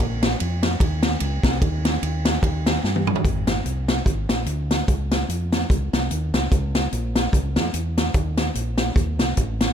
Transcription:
0.00 A#1, kick, ride bell
0.23 snare, ride bell
0.40 F2, ride bell
0.63 snare, ride bell
0.80 D#2, kick, ride bell
1.03 snare, ride bell
1.20 C#2, ride bell
1.43 C2, kick, snare, ride bell
1.62 D#2, kick, ride bell
1.85 snare, ride bell
2.03 D#2, ride bell
2.25 snare, ride bell
2.43 D#2, kick, ride bell
2.66 snare, ride bell
2.84 G2, snare
2.96 high tom
3.07 mid tom
3.16 floor tom
3.25 G#1, kick, closed hi-hat
3.47 snare, closed hi-hat
3.65 C2, closed hi-hat
3.88 snare, closed hi-hat
4.06 G#1, kick, closed hi-hat
4.29 A#1, snare, closed hi-hat
4.46 D2, closed hi-hat
4.71 snare, closed hi-hat
4.88 C#2, kick, closed hi-hat
5.11 snare, closed hi-hat
5.29 F2, closed hi-hat
5.52 snare, closed hi-hat
5.70 C#2, kick, closed hi-hat
5.93 C2, snare, closed hi-hat
6.11 D#2, closed hi-hat
6.34 C#2, snare, closed hi-hat
6.52 C#2, kick, closed hi-hat
6.75 snare, closed hi-hat
6.93 A#1, closed hi-hat
7.16 snare, closed hi-hat
7.33 C#2, kick, closed hi-hat
7.56 F2, snare, closed hi-hat
7.74 E2, closed hi-hat
7.98 snare, closed hi-hat
8.14 D#2, kick, closed hi-hat
8.37 snare, closed hi-hat
8.55 A#1, closed hi-hat
8.78 snare, closed hi-hat
8.96 D#2, kick, closed hi-hat
9.19 C2, snare, closed hi-hat
9.37 A1, kick, closed hi-hat
9.61 snare, closed hi-hat

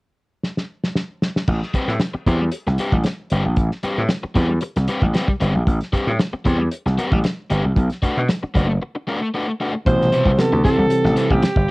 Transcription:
0.43 snare
0.57 snare
0.84 snare
0.95 snare
1.22 snare
1.36 snare
1.48 A1, kick, crash
1.63 snare
1.74 G3 C4 G4 B4, muted slap bass stroke, kick, closed hi-hat
1.88 A2, snare
2.00 muted overdriven electric guitar stroke, snare, closed hi-hat
2.14 muted overdriven electric guitar stroke, muted slap bass stroke
2.26 E2 G3 C4 G4 C5, kick, closed hi-hat
2.41 muted overdriven electric guitar stroke
2.52 closed hi-hat
2.67 C2, muted overdriven electric guitar stroke, snare
2.78 G3 C4 G4 B4, closed hi-hat
2.92 A1, muted overdriven electric guitar stroke, kick
3.03 muted overdriven electric guitar stroke, snare, closed hi-hat
3.30 G1 G3 C4 G4 B4, closed hi-hat
3.45 A#1, muted overdriven electric guitar stroke
3.57 A1, kick, closed hi-hat
3.71 snare
3.83 G3 C4 G4 B4, muted slap bass stroke, closed hi-hat
3.98 A2
4.09 muted overdriven electric guitar stroke, snare, closed hi-hat
4.23 muted overdriven electric guitar stroke, muted slap bass stroke
4.35 E2 G3 C4 G4 B4, kick, closed hi-hat
4.49 muted overdriven electric guitar stroke
4.61 muted overdriven electric guitar stroke, closed hi-hat
4.76 C2, muted overdriven electric guitar stroke, snare, closed hi-hat
4.88 G3 C4 G4 B4, closed hi-hat
5.02 A1, muted overdriven electric guitar stroke, kick
5.14 G3 C4 G4 B4, snare, closed hi-hat
5.28 muted overdriven electric guitar stroke, kick
5.40 G1 G3 C4 G4 B4, closed hi-hat
5.55 A#1, muted overdriven electric guitar stroke
5.67 A1, kick, closed hi-hat
5.81 snare, closed hi-hat
5.93 G3 C4 G4 B4, muted slap bass stroke, kick, closed hi-hat
6.07 A2
6.19 muted overdriven electric guitar stroke, snare, closed hi-hat
6.33 muted overdriven electric guitar stroke, muted slap bass stroke
6.45 E2 G3 C4 G4 C5, kick, closed hi-hat
6.60 muted overdriven electric guitar stroke
6.72 closed hi-hat
6.86 C2, muted overdriven electric guitar stroke, snare
6.98 G3 C4 G4 B4, closed hi-hat
7.12 A1, muted overdriven electric guitar stroke, kick
7.24 muted overdriven electric guitar stroke, snare, closed hi-hat
7.50 G1 G3 C4 G4 B4, closed hi-hat
7.65 C2, muted overdriven electric guitar stroke
7.77 B1, kick, closed hi-hat
7.90 snare, closed hi-hat
8.02 A3 D4 F#4 B4, muted slap bass stroke, kick, closed hi-hat
8.17 B2
8.29 muted overdriven electric guitar stroke, snare, closed hi-hat
8.43 muted overdriven electric guitar stroke, muted slap bass stroke
8.54 F#1 A3 D4 F#4 B4, kick, closed hi-hat
8.68 muted overdriven electric guitar stroke
8.82 muted overdriven electric guitar stroke
8.95 muted overdriven electric guitar stroke
9.07 A3 D4 F#4 B4
9.21 muted overdriven electric guitar stroke
9.34 A3 D4 F#4 B4
9.48 muted overdriven electric guitar stroke
9.60 A3 D4 F#4 B4
9.74 muted overdriven electric guitar stroke
9.85 A1 B2 E3 G3 C5, kick, closed hi-hat
9.91 C3
10.01 snare
10.12 G3 C4 E4 B4, closed hi-hat
10.25 C2, kick
10.38 C3 E3 G3 B3 A4, muted slap bass stroke, muted overdriven electric guitar stroke, snare, closed hi-hat
10.52 D2, muted overdriven electric guitar stroke
10.64 C3 E3 G3 C4 E4 A4 C5, kick, closed hi-hat
10.78 C2, muted overdriven electric guitar stroke
10.90 muted slap bass stroke, closed hi-hat
11.04 A1, muted overdriven electric guitar stroke, snare
11.16 G3 C4 E4 B4, closed hi-hat
11.30 A1 G4, muted overdriven electric guitar stroke, kick
11.42 muted overdriven electric guitar stroke, muted slap bass stroke, snare, closed hi-hat
11.56 G1, kick

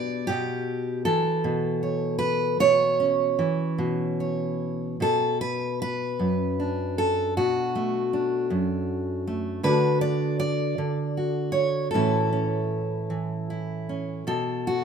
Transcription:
Already playing: B2 B3 D4 G4 D5
0.27 B2 G4
1.05 E3 A4
1.44 B2
1.83 C#5
2.19 B4
2.60 B2 C#5
3.00 C#4
3.39 E3
3.78 B2
4.20 C#5
5.00 B2 A4
5.41 B4
5.82 B4
6.19 F#2
6.60 D4
6.98 A4
7.37 B2 F#4
7.75 A3
8.13 D4
8.50 F#2
9.27 A3
9.63 D3 A3 D4 F#4 B4
10.01 D5
10.40 D5
10.78 D3
11.17 F#4
11.52 C#5
11.91 A2 A4
11.95 E3 C#4 E4
12.33 C#4
13.10 E3
13.50 E4
13.89 C#4
14.27 B2 A4
14.67 F#4

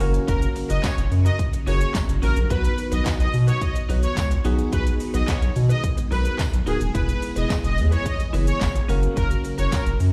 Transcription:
0.00 F#1 C#3 F#3 A#3 C#4 F#4 A#4, open hi-hat, shaker
0.14 muted clean electric guitar stroke, closed hi-hat, shaker
0.28 F#1 C#4 F#4 A#4, kick, closed hi-hat, shaker
0.42 muted clean electric guitar stroke, closed hi-hat, shaker
0.56 muted clean electric guitar stroke, open hi-hat, shaker
0.69 F#1 C#4 F#4 A#4 D#5, closed hi-hat, shaker
0.83 C#4 F#4 A#4 C#5, kick, snare, clap, closed hi-hat, tambourine, shaker
0.97 F#1, muted clean electric guitar stroke, closed hi-hat, shaker
1.11 F#2, muted clean electric guitar stroke, open hi-hat, shaker
1.25 C#4 F#4 A#4 D#5, closed hi-hat, shaker
1.39 muted clean electric guitar stroke, kick, closed hi-hat, shaker
1.53 muted clean electric guitar stroke, closed hi-hat, shaker
1.67 F#1 A#3 C#4 F#4 G#4 A#4 C#5, open hi-hat, shaker
1.81 muted clean electric guitar stroke, closed hi-hat, shaker
1.95 muted clean electric guitar stroke, kick, snare, clap, closed hi-hat, tambourine, shaker
2.08 F#1, muted clean electric guitar stroke, closed hi-hat, shaker
2.22 A1 A#3 C#4 F#4 A#4, open hi-hat, shaker
2.36 A#1, muted clean electric guitar stroke, closed hi-hat, shaker
2.50 B1 D#3 B3 D#4 F#4 B4, kick, closed hi-hat, shaker
2.64 muted clean electric guitar stroke, closed hi-hat, shaker
2.78 muted clean electric guitar stroke, open hi-hat, shaker
2.92 B1 D#4 F#4 B4 D#5, closed hi-hat, shaker
3.05 D#4 F#4 B4, kick, snare, clap, closed hi-hat, tambourine, shaker
3.20 B1 D#5, muted clean electric guitar stroke, closed hi-hat, shaker
3.34 B2, muted clean electric guitar stroke, open hi-hat, shaker
3.47 D#4 F#4 B4 C#5, closed hi-hat, shaker
3.61 D#5, muted clean electric guitar stroke, kick, closed hi-hat, shaker
3.75 muted clean electric guitar stroke, closed hi-hat, shaker
3.89 B1 B3 D#4 F#4 B4 C#5, open hi-hat, shaker
4.03 C#5, muted clean electric guitar stroke, closed hi-hat, shaker
4.17 C#2, muted clean electric guitar stroke, kick, snare, clap, closed hi-hat, tambourine, shaker
4.31 muted clean electric guitar stroke, closed hi-hat, shaker
4.45 B1 G#3 B3 D#4 F#4 G#4 B4, open hi-hat, shaker
4.59 muted clean electric guitar stroke, closed hi-hat, shaker
4.72 B1 D#4 F#4 B4, kick, closed hi-hat, shaker
4.86 muted clean electric guitar stroke, closed hi-hat, shaker
5.00 muted clean electric guitar stroke, open hi-hat, shaker
5.14 B1 D#4 F#4 B4 D#5, closed hi-hat, shaker
5.28 D#4 F#4 B4 C#5, kick, snare, clap, closed hi-hat, tambourine, shaker
5.42 B1, closed hi-hat, shaker
5.56 B2, muted clean electric guitar stroke, open hi-hat, shaker
5.69 D#4 F#4 B4 D#5, closed hi-hat, shaker
5.83 muted clean electric guitar stroke, kick, closed hi-hat, shaker
5.97 muted clean electric guitar stroke, closed hi-hat, shaker
6.11 B1 B3 D#4 F#4 A#4 B4, open hi-hat, shaker
6.25 muted clean electric guitar stroke, closed hi-hat, shaker
6.39 muted clean electric guitar stroke, kick, snare, clap, closed hi-hat, tambourine, shaker
6.53 B1, muted clean electric guitar stroke, closed hi-hat, shaker
6.66 D1 B3 D#4 F#4 G#4 A#4 B4, open hi-hat, shaker
6.81 D#1, muted clean electric guitar stroke, closed hi-hat, shaker
6.94 E1 E3 B3 E4 G#4 B4, kick, closed hi-hat, shaker
7.08 muted clean electric guitar stroke, closed hi-hat, shaker
7.22 muted clean electric guitar stroke, open hi-hat, shaker
7.36 E1 E4 G#4 B4 D#5, closed hi-hat, shaker
7.50 E4 G#4 B4, kick, snare, clap, closed hi-hat, tambourine, shaker
7.64 E1 D#5, muted clean electric guitar stroke, closed hi-hat, shaker
7.78 E2, muted clean electric guitar stroke, open hi-hat, shaker
7.91 E4 G#4 B4 C#5, closed hi-hat, shaker
8.05 D#5, muted clean electric guitar stroke, kick, closed hi-hat, shaker
8.19 muted clean electric guitar stroke, closed hi-hat, shaker
8.33 F#1 B3 E4 G#4 B4 C#5, open hi-hat, shaker
8.47 C#5, muted clean electric guitar stroke, closed hi-hat, shaker
8.61 G#1, muted clean electric guitar stroke, kick, snare, clap, closed hi-hat, tambourine, shaker
8.75 muted clean electric guitar stroke, closed hi-hat, shaker
8.88 F#1 C#3 F#3 A#3 C#4 F#4 A#4, open hi-hat, shaker
9.03 closed hi-hat, shaker
9.16 F#1 C#4 F#4 A#4, kick, closed hi-hat, shaker
9.30 muted clean electric guitar stroke, closed hi-hat, shaker
9.44 muted clean electric guitar stroke, open hi-hat, shaker
9.58 F#1 C#4 F#4 A#4 C#5, closed hi-hat, shaker
9.72 C#4 F#4 A#4, kick, snare, clap, closed hi-hat, tambourine, shaker
9.86 F#1, muted clean electric guitar stroke, closed hi-hat, shaker
10.00 F#2, muted clean electric guitar stroke, open hi-hat, shaker

